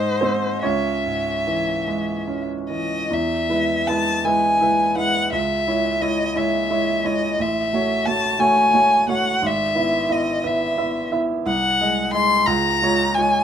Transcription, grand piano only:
0.00 0.61 G#2 medium
0.00 0.21 G#3 soft
0.00 0.19 D#4 medium
0.00 0.23 D#5 medium
0.21 0.60 G#3 soft
0.21 0.61 C4 soft
0.21 0.63 C5 medium
0.63 3.07 C#2 soft
0.63 1.82 C#4 soft
0.63 1.86 C#5 medium
1.06 1.71 G#2 soft
1.47 2.11 E3 soft
1.87 2.53 G#3 soft
2.28 2.95 C#4 soft
2.70 3.11 E3 soft
3.10 3.48 E2 medium
3.49 3.83 G#3 soft
3.49 3.83 E4 soft
3.49 3.83 B4 soft
3.88 4.20 G#3 soft
3.88 4.21 E4 soft
3.88 4.21 B4 soft
4.25 4.56 G#3 soft
4.25 4.57 E4 soft
4.25 4.57 B4 soft
4.60 4.91 G#3 soft
4.60 4.92 E4 soft
4.60 4.92 B4 soft
4.96 5.27 G#3 soft
4.96 5.27 E4 soft
4.96 5.28 B4 soft
5.32 5.65 C#2 medium
5.67 5.98 G#3 soft
5.67 5.97 E4 soft
5.67 5.98 C#5 soft
6.01 6.31 G#3 soft
6.01 6.32 E4 soft
6.01 6.32 C#5 soft
6.36 6.66 G#3 soft
6.36 6.66 E4 soft
6.36 6.67 C#5 soft
6.70 7.01 G#3 soft
6.70 7.01 E4 soft
6.70 7.01 C#5 soft
7.04 7.35 G#3 soft
7.04 7.35 E4 soft
7.04 7.35 C#5 soft
7.40 7.72 A1 medium
7.73 8.03 A3 soft
7.73 8.03 F#4 soft
7.73 8.04 C#5 soft
8.07 8.37 A3 soft
8.07 8.37 F#4 soft
8.07 8.37 C#5 soft
8.39 8.70 A3 soft
8.39 8.70 F#4 soft
8.39 8.70 C#5 soft
8.74 9.05 A3 soft
8.74 9.05 F#4 soft
8.74 9.06 C#5 soft
9.08 9.39 A3 soft
9.08 9.40 F#4 soft
9.08 9.40 C#5 soft
9.42 9.76 G#1 medium
9.75 10.07 B3 soft
9.75 10.07 E4 soft
9.75 10.07 E5 soft
10.09 10.41 B3 soft
10.09 10.41 E4 soft
10.09 10.41 E5 soft
10.44 10.74 B3 soft
10.44 10.74 E4 soft
10.44 10.75 E5 soft
10.77 11.08 B3 soft
10.77 11.08 E4 soft
10.77 11.08 E5 soft
11.11 11.42 B3 soft
11.11 11.43 E4 soft
11.11 11.42 E5 soft
11.46 11.79 C2 medium
11.81 12.11 G#3 soft
11.81 12.11 G#4 soft
11.81 12.11 D#5 soft
12.13 12.44 G#3 soft
12.13 12.44 G#4 soft
12.13 12.44 D#5 soft
12.47 12.80 C#2 medium
12.82 13.12 G#3 soft
12.82 13.12 F4 soft
12.82 13.13 C#5 medium
13.17 13.44 G#3 soft
13.17 13.44 F4 soft
13.17 13.44 C#5 soft

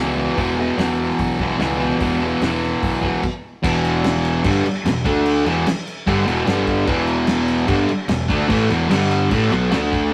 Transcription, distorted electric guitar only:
0.00 0.35 E2 medium
0.00 0.18 B2 medium
0.00 0.15 E3 loud
0.16 0.36 B2 medium
0.16 0.39 E3 medium
0.36 0.77 E2 medium
0.36 0.59 B2 loud
0.36 0.56 E3 loud
0.56 0.78 B2 medium
0.56 0.80 E3 medium
0.77 1.58 E2 medium
0.77 1.41 B2 medium
0.77 1.38 E3 medium
1.39 1.59 B2 medium
1.39 1.61 E3 medium
1.58 1.97 E2 loud
1.58 1.81 B2 medium
1.58 1.77 E3 loud
1.78 2.00 B2 medium
1.78 2.01 E3 medium
1.99 2.39 E2 loud
1.99 2.23 B2 medium
1.99 2.19 E3 loud
2.20 2.41 B2 medium
2.20 2.43 E3 medium
2.40 3.21 E2 medium
2.40 3.04 B2 medium
2.40 3.01 E3 medium
3.02 3.23 B2 medium
3.02 3.21 E3 medium
3.63 4.43 E2 loud
3.63 4.44 B2 loud
3.63 4.44 E3 loud
4.44 4.64 G2 medium
4.44 4.64 D3 loud
4.44 4.65 G3 loud
4.65 muted distorted electric guitar stroke medium
4.85 5.01 E2 medium
4.85 5.01 B2 medium
5.04 5.45 D3 loud
5.04 5.45 A3 loud
5.04 5.46 D4 loud
5.45 5.65 E2 medium
5.45 5.66 B2 medium
5.45 5.66 E3 loud
6.06 6.25 G2 loud
6.06 6.26 D3 medium
6.06 6.27 G3 medium
6.26 6.46 E2 medium
6.26 6.47 B2 loud
6.26 6.47 E3 medium
6.46 6.86 G2 loud
6.46 6.87 D3 loud
6.46 6.87 G3 loud
6.86 7.66 E2 loud
6.86 7.67 B2 loud
6.86 7.68 E3 loud
7.67 7.87 G2 medium
7.67 7.88 D3 medium
7.67 7.88 G3 loud
7.87 muted distorted electric guitar stroke medium
8.08 8.25 E2 medium
8.08 8.25 B2 medium
8.28 8.48 D3 medium
8.28 8.49 A3 loud
8.28 8.49 D4 loud
8.49 8.69 A2 loud
8.49 8.69 E3 loud
8.49 8.70 A3 loud
8.69 8.89 E2 medium
8.69 8.89 B2 medium
8.69 8.90 E3 loud
8.89 9.30 G2 loud
8.89 9.30 D3 loud
8.89 9.31 G3 loud
9.31 9.51 A2 medium
9.31 9.51 E3 loud
9.31 9.51 A3 loud
9.51 9.71 B2 medium
9.51 9.71 F#3 loud
9.51 9.72 B3 loud
9.71 10.11 D3 loud
9.71 10.12 A3 loud
9.71 10.12 D4 loud

